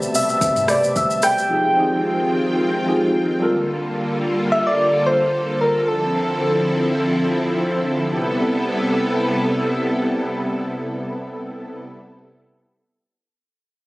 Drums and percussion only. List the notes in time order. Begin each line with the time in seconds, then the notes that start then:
0.02 shaker
0.15 open hi-hat, shaker
0.29 shaker
0.41 kick, shaker
0.56 mid tom, shaker
0.68 cross-stick, open hi-hat, shaker
0.84 shaker
0.96 kick, shaker
1.10 shaker
1.22 cross-stick, open hi-hat, shaker
1.38 shaker